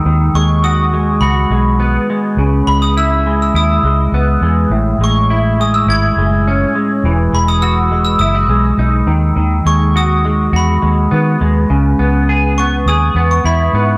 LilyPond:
<<
  \new Staff \with { instrumentName = "Glockenspiel" } { \time 4/4 \key gis \phrygian \tempo 4 = 103 r8 cis'''8 dis'''4 b''4 r4 | r8 b''16 dis'''16 e'''8. e'''16 dis'''4. r8 | r8 cis'''4 dis'''16 e'''16 gis'''4 r4 | r8 b''16 dis'''16 e'''8. e'''16 dis'''4. r8 |
r8 cis'''8 dis'''4 b''4 r4 | r4. cis'''8 dis'''8. cis'''16 b''8. r16 | }
  \new Staff \with { instrumentName = "Clean electric guitar" } { \clef bass \time 4/4 \key gis \phrygian dis8 gis8 fis'8 gis8 fis'8 gis8 b8 gis8 | cis8 gis8 e'8 gis8 e'8 gis8 b8 gis8 | a,8 gis8 e'8 gis8 e'8 gis8 cis'8 gis8 | e8 gis8 fis'8 gis8 e'16 fis'16 gis8 dis'8 dis8 |
dis8 gis8 fis'8 gis8 fis'8 gis8 b8 gis8 | cis8 b8 gis'8 b8 gis'8 b8 e'8 b8 | }
  \new Staff \with { instrumentName = "Fingered electric bass" } { \clef bass \time 4/4 \key gis \phrygian dis,8 dis,4. cis,8 b,,4 r8 | cis,8 cis,4. dis,8 cis,8 cis,8 e,8 | a,,8 a,,4. gis,,8 fis,,4 r8 | e,,8 e,,4. fis,,8 b,,8 b,,8 dis,8 |
dis,8 dis,4. e,8 dis,8 dis8 dis,8 | cis,8 cis,4. dis,8 e,8 e,8 gis,8 | }
>>